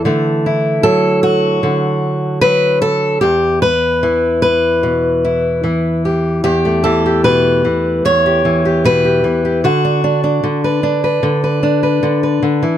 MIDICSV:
0, 0, Header, 1, 2, 480
1, 0, Start_track
1, 0, Tempo, 797872
1, 32, Time_signature, 4, 2, 24, 8
1, 7687, End_track
2, 0, Start_track
2, 0, Title_t, "Steel-string acoustic guitar"
2, 0, Program_c, 0, 25
2, 0, Note_on_c, 0, 52, 60
2, 30, Note_on_c, 0, 50, 69
2, 36, Note_on_c, 0, 57, 47
2, 277, Note_on_c, 0, 64, 47
2, 501, Note_on_c, 0, 69, 100
2, 505, Note_off_c, 0, 52, 0
2, 507, Note_on_c, 0, 54, 63
2, 737, Note_off_c, 0, 69, 0
2, 740, Note_on_c, 0, 66, 96
2, 974, Note_off_c, 0, 50, 0
2, 981, Note_on_c, 0, 50, 61
2, 1450, Note_off_c, 0, 66, 0
2, 1453, Note_on_c, 0, 71, 107
2, 1455, Note_off_c, 0, 54, 0
2, 1462, Note_on_c, 0, 54, 60
2, 1692, Note_off_c, 0, 71, 0
2, 1694, Note_on_c, 0, 69, 101
2, 1913, Note_off_c, 0, 50, 0
2, 1914, Note_off_c, 0, 54, 0
2, 1929, Note_off_c, 0, 69, 0
2, 1931, Note_on_c, 0, 67, 87
2, 1940, Note_on_c, 0, 40, 70
2, 1945, Note_off_c, 0, 57, 0
2, 2175, Note_off_c, 0, 67, 0
2, 2178, Note_on_c, 0, 71, 99
2, 2383, Note_off_c, 0, 64, 0
2, 2424, Note_on_c, 0, 52, 63
2, 2653, Note_off_c, 0, 71, 0
2, 2660, Note_on_c, 0, 71, 88
2, 2907, Note_on_c, 0, 47, 61
2, 3156, Note_on_c, 0, 64, 44
2, 3383, Note_off_c, 0, 52, 0
2, 3390, Note_on_c, 0, 52, 57
2, 3391, Note_off_c, 0, 47, 0
2, 3638, Note_off_c, 0, 71, 0
2, 3641, Note_on_c, 0, 67, 42
2, 3850, Note_off_c, 0, 64, 0
2, 3850, Note_off_c, 0, 67, 0
2, 3871, Note_off_c, 0, 40, 0
2, 3873, Note_on_c, 0, 67, 87
2, 3878, Note_on_c, 0, 40, 68
2, 4002, Note_on_c, 0, 57, 44
2, 4113, Note_on_c, 0, 69, 84
2, 4114, Note_off_c, 0, 52, 0
2, 4121, Note_on_c, 0, 52, 64
2, 4236, Note_off_c, 0, 67, 0
2, 4246, Note_on_c, 0, 67, 45
2, 4355, Note_off_c, 0, 69, 0
2, 4357, Note_on_c, 0, 71, 96
2, 4361, Note_on_c, 0, 47, 66
2, 4593, Note_off_c, 0, 52, 0
2, 4600, Note_off_c, 0, 47, 0
2, 4600, Note_on_c, 0, 52, 58
2, 4835, Note_off_c, 0, 40, 0
2, 4839, Note_off_c, 0, 71, 0
2, 4842, Note_on_c, 0, 40, 68
2, 4846, Note_on_c, 0, 73, 102
2, 4962, Note_off_c, 0, 67, 0
2, 4969, Note_on_c, 0, 67, 44
2, 5076, Note_off_c, 0, 52, 0
2, 5083, Note_on_c, 0, 52, 59
2, 5199, Note_off_c, 0, 67, 0
2, 5206, Note_on_c, 0, 67, 44
2, 5321, Note_on_c, 0, 47, 62
2, 5324, Note_off_c, 0, 73, 0
2, 5327, Note_on_c, 0, 71, 100
2, 5436, Note_off_c, 0, 67, 0
2, 5443, Note_on_c, 0, 67, 44
2, 5551, Note_off_c, 0, 52, 0
2, 5559, Note_on_c, 0, 52, 63
2, 5561, Note_off_c, 0, 47, 0
2, 5677, Note_off_c, 0, 67, 0
2, 5684, Note_on_c, 0, 67, 42
2, 5773, Note_off_c, 0, 67, 0
2, 5799, Note_off_c, 0, 52, 0
2, 5799, Note_on_c, 0, 50, 73
2, 5801, Note_off_c, 0, 71, 0
2, 5802, Note_off_c, 0, 40, 0
2, 5803, Note_off_c, 0, 57, 0
2, 5803, Note_on_c, 0, 66, 82
2, 5924, Note_on_c, 0, 62, 46
2, 6033, Note_off_c, 0, 62, 0
2, 6040, Note_on_c, 0, 62, 63
2, 6151, Note_off_c, 0, 62, 0
2, 6158, Note_on_c, 0, 62, 46
2, 6271, Note_off_c, 0, 50, 0
2, 6278, Note_on_c, 0, 50, 67
2, 6400, Note_off_c, 0, 66, 0
2, 6403, Note_on_c, 0, 71, 48
2, 6509, Note_off_c, 0, 62, 0
2, 6516, Note_on_c, 0, 62, 66
2, 6634, Note_off_c, 0, 71, 0
2, 6641, Note_on_c, 0, 71, 48
2, 6748, Note_off_c, 0, 50, 0
2, 6755, Note_on_c, 0, 50, 69
2, 6873, Note_off_c, 0, 71, 0
2, 6880, Note_on_c, 0, 71, 47
2, 6989, Note_off_c, 0, 62, 0
2, 6996, Note_on_c, 0, 62, 59
2, 7110, Note_off_c, 0, 71, 0
2, 7117, Note_on_c, 0, 71, 47
2, 7229, Note_off_c, 0, 50, 0
2, 7236, Note_on_c, 0, 50, 65
2, 7352, Note_off_c, 0, 71, 0
2, 7359, Note_on_c, 0, 71, 44
2, 7468, Note_off_c, 0, 50, 0
2, 7475, Note_on_c, 0, 50, 63
2, 7595, Note_off_c, 0, 50, 0
2, 7596, Note_on_c, 0, 52, 57
2, 7685, Note_off_c, 0, 62, 0
2, 7687, Note_off_c, 0, 52, 0
2, 7687, Note_off_c, 0, 71, 0
2, 7687, End_track
0, 0, End_of_file